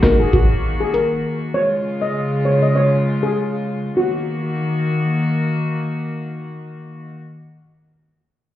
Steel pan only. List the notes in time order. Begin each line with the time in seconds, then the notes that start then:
0.03 A#4
0.20 G#4
0.33 F#4
0.80 G#4
0.94 A#4
1.54 C#5
2.02 D#5
2.45 C#5
2.62 D#5
2.76 C#5
3.23 G#4
3.97 F#4